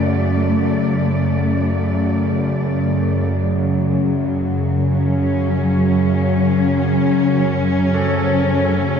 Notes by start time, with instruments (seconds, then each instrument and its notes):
Already playing: synth drone F#2 C#3, cello section A3 D5
1.96 church bells C#3
3.38 synth drone F#2 C#3, cello section F#3
4.95 cello section C#4
7.94 church bells A4